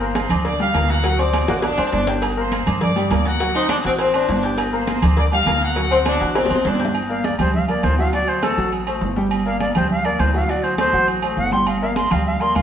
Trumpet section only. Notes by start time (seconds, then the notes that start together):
0.01 C5 C6
0.45 D5 D6
0.60 F5
0.90 F#4 F#5
1.19 D5 D6
2.38 C5 C6
2.81 D5 D6
3.11 D5 D6
3.26 F#4 F#5
4.73 C5 C6
5.17 D5 D6
5.32 F5
5.63 F#4 F#5